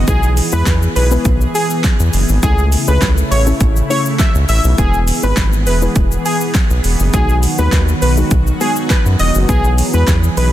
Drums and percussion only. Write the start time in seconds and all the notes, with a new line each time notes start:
0.08 kick, closed hi-hat, shaker
0.23 shaker
0.37 open hi-hat, shaker
0.53 shaker
0.66 kick, snare, clap, closed hi-hat, shaker
0.82 shaker
0.96 open hi-hat, shaker
1.11 shaker
1.25 kick, closed hi-hat, shaker
1.41 shaker
1.55 open hi-hat, shaker
1.70 shaker
1.84 kick, snare, clap, closed hi-hat, shaker
2.00 shaker
2.13 open hi-hat, shaker
2.29 shaker
2.43 kick, closed hi-hat, shaker
2.58 shaker
2.72 open hi-hat, shaker
2.88 shaker
3.02 kick, snare, clap, closed hi-hat, shaker
3.18 shaker
3.32 open hi-hat, shaker
3.47 shaker
3.60 kick, closed hi-hat, shaker
3.77 shaker
3.91 open hi-hat, shaker
4.06 shaker
4.19 kick, snare, clap, closed hi-hat, shaker
4.35 shaker
4.49 open hi-hat, shaker
4.64 shaker
4.78 kick, closed hi-hat, shaker
4.94 shaker
5.08 open hi-hat, shaker
5.23 shaker
5.37 kick, snare, clap, closed hi-hat, shaker
5.53 shaker
5.67 open hi-hat, shaker
5.82 shaker
5.96 kick, closed hi-hat, shaker
6.12 shaker
6.26 open hi-hat, shaker
6.41 shaker
6.55 kick, snare, clap, closed hi-hat, shaker
6.70 shaker
6.84 open hi-hat, shaker
7.00 shaker
7.14 kick, closed hi-hat, shaker
7.29 shaker
7.43 open hi-hat, shaker
7.58 shaker
7.72 kick, snare, clap, closed hi-hat, shaker
7.88 shaker
8.02 open hi-hat, shaker
8.17 shaker
8.31 kick, closed hi-hat, shaker
8.47 shaker
8.61 open hi-hat, shaker
8.76 shaker
8.90 kick, snare, clap, closed hi-hat, shaker
9.06 shaker
9.19 open hi-hat, shaker
9.35 shaker
9.49 kick, closed hi-hat, shaker
9.64 shaker
9.78 open hi-hat, shaker
9.94 shaker
10.08 kick, snare, clap, closed hi-hat, shaker
10.24 shaker
10.37 open hi-hat, shaker